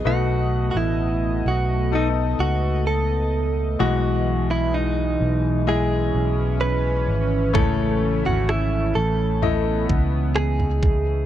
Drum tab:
SD |----------------|----------------|----r-------r---|
FT |----------------|----------------|o--o----o----oo-|
BD |----------------|----------------|o---------o---o-|